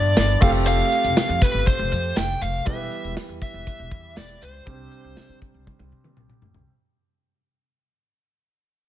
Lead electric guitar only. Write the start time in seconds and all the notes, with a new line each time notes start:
Already playing: D5
0.42 F5
0.67 F5
1.42 B4
1.67 C5
2.17 G5
2.42 F5
2.67 E5
3.42 E5
4.17 D5
4.43 C5